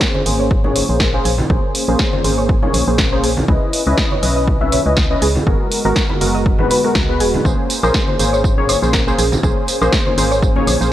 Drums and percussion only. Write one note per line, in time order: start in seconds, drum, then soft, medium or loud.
0.01 kick loud
0.01 snare loud
0.15 high conga medium
0.26 open hi-hat loud
0.51 kick loud
0.64 low conga medium
0.76 open hi-hat loud
0.76 high conga medium
1.00 kick loud
1.00 snare loud
1.25 open hi-hat loud
1.38 high conga medium
1.38 low conga medium
1.50 kick loud
1.75 open hi-hat loud
1.99 kick loud
1.99 snare loud
2.13 high conga loud
2.24 open hi-hat loud
2.49 kick loud
2.63 low conga medium
2.74 open hi-hat loud
2.74 high conga medium
2.98 kick loud
2.98 snare loud
3.24 open hi-hat loud
3.37 high conga medium
3.37 low conga medium
3.48 kick loud
3.73 open hi-hat loud
3.98 kick loud
3.98 snare loud
4.11 high conga medium
4.23 open hi-hat loud
4.48 kick loud
4.61 low conga medium
4.72 open hi-hat loud
4.72 high conga medium
4.97 kick loud
4.97 snare loud
5.22 open hi-hat loud
5.35 high conga medium
5.35 low conga medium
5.47 kick loud
5.72 open hi-hat loud
5.96 kick loud
5.96 snare loud
6.09 high conga medium
6.21 open hi-hat loud
6.46 kick loud
6.59 low conga medium
6.71 open hi-hat loud
6.71 high conga medium
6.95 kick loud
6.95 snare loud
7.20 open hi-hat loud
7.34 high conga medium
7.34 low conga medium
7.45 kick loud
7.45 tambourine soft
7.70 open hi-hat loud
7.70 tambourine medium
7.83 tambourine soft
7.83 high woodblock medium
7.94 kick loud
7.94 snare loud
7.94 tambourine soft
8.08 high conga medium
8.19 open hi-hat loud
8.19 tambourine medium
8.34 tambourine soft
8.44 kick loud
8.44 tambourine soft
8.58 low conga medium
8.69 open hi-hat loud
8.69 tambourine medium
8.69 high conga medium
8.69 high woodblock medium
8.83 tambourine soft
8.93 kick loud
8.93 snare loud
8.93 tambourine soft
9.08 tambourine soft
9.19 open hi-hat loud
9.19 tambourine medium
9.32 tambourine soft
9.32 high conga medium
9.32 low conga medium
9.43 kick loud
9.43 tambourine soft
9.68 open hi-hat loud
9.68 tambourine medium
9.82 tambourine soft
9.82 high woodblock medium
9.92 kick loud
9.92 snare loud
9.92 tambourine soft
10.06 high conga medium
10.18 open hi-hat loud
10.18 tambourine medium
10.32 tambourine soft
10.43 kick loud
10.43 tambourine soft
10.56 low conga medium
10.67 open hi-hat loud
10.67 tambourine medium
10.67 high conga medium
10.67 high woodblock medium
10.82 tambourine soft